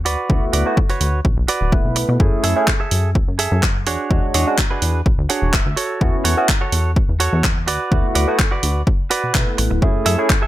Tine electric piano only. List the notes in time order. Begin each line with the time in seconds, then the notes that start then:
0.29 A3 B3 E4 F#4
0.66 A3 B3 E4 F#4
1.72 A3 B3 E4 B4
2.19 A3 C#4 E4 G#4
2.56 A3 C#4 E4 G#4
4.10 G#3 D4 F#4 C#5
4.47 G#3 C#4 D4 F#4
6.01 B3 C#4 E4 F#4
6.37 B3 C#4 E4 F#4
7.91 A3 B3 E4 F#4
8.28 A3 B3 E4 F#4
9.34 A3 B3 E4 B4
9.82 A3 C#4 E4 G#4
10.18 A3 C#4 E4 G#4